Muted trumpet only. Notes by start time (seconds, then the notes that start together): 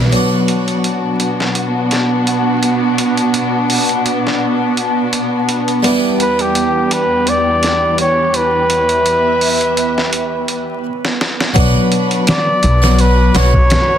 6.22 B4
6.42 G4
6.93 B4
7.29 D5
8.01 C#5
8.36 B4
12.29 D5
13.01 B4
13.37 C#5